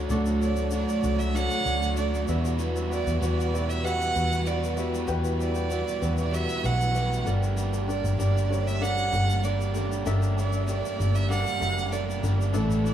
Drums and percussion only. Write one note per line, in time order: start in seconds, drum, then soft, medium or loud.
0.10 shaker medium
0.26 shaker medium
0.42 shaker medium
0.56 shaker soft
0.71 shaker medium
0.89 shaker medium
1.03 shaker medium
1.20 shaker medium
1.36 shaker medium
1.51 shaker medium
1.66 shaker medium
1.83 shaker medium
1.97 shaker medium
2.14 shaker soft
2.28 shaker medium
2.45 shaker medium
2.59 shaker medium
2.76 shaker medium
2.92 shaker soft
3.07 shaker medium
3.23 shaker medium
3.41 shaker medium
3.55 shaker medium
3.70 shaker medium
3.86 shaker medium
4.01 shaker soft
4.16 shaker medium
4.32 shaker medium
4.46 shaker medium
4.64 shaker medium
4.77 shaker medium
4.94 shaker medium
5.08 shaker medium
5.25 shaker medium
5.40 shaker medium
5.55 shaker soft
5.70 shaker medium
5.88 shaker medium
6.02 shaker medium
6.18 shaker soft
6.34 shaker medium
6.49 shaker soft
6.64 shaker medium
6.81 shaker medium
6.95 shaker medium
7.13 shaker soft
7.27 shaker soft
7.43 shaker medium
7.57 shaker medium
7.73 shaker medium
7.90 shaker soft
8.05 shaker medium
8.20 shaker medium
8.37 shaker soft
8.53 shaker medium
8.68 shaker medium
8.84 shaker medium
8.98 shaker soft
9.13 shaker soft
9.30 shaker medium
9.44 shaker medium
9.61 shaker medium
9.75 shaker medium
9.92 shaker medium
10.06 shaker medium
10.22 shaker medium
10.38 shaker medium
10.53 shaker medium
10.68 shaker medium
10.85 shaker medium
11.01 shaker medium
11.15 shaker medium
11.32 shaker medium
11.47 shaker medium
11.62 shaker medium
11.78 shaker medium
11.93 shaker medium
12.10 shaker soft
12.24 shaker medium
12.41 shaker soft
12.54 shaker medium
12.71 shaker medium
12.86 shaker soft